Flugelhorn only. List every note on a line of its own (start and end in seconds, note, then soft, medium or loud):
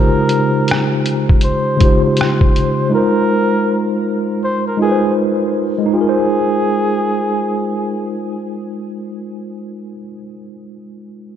0.00 0.87 A#4 medium
1.44 2.00 C5 loud
2.04 2.90 C5 medium
2.94 3.87 A#4 loud
4.44 4.64 C5 medium
4.67 4.80 A#4 medium
4.82 5.15 G#4 medium
5.94 8.15 G#4 medium